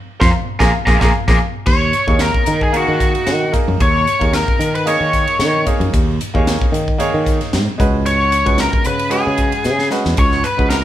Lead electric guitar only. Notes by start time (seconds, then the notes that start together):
0.21 F5 A#5 C6
0.60 G#5 A#5 D6
0.86 G#5 A#5 D6
1.01 G#5 A#5 D6
1.28 G#5 A#5 D6
1.67 C#5
2.21 A#4
2.63 G#4
2.77 F#4
3.82 C#5
4.34 A#4
4.76 B4
4.87 C#5
8.06 C#5
8.60 A#4
8.87 B4
9.12 G#4
10.19 C#5
10.44 B4
10.70 A#4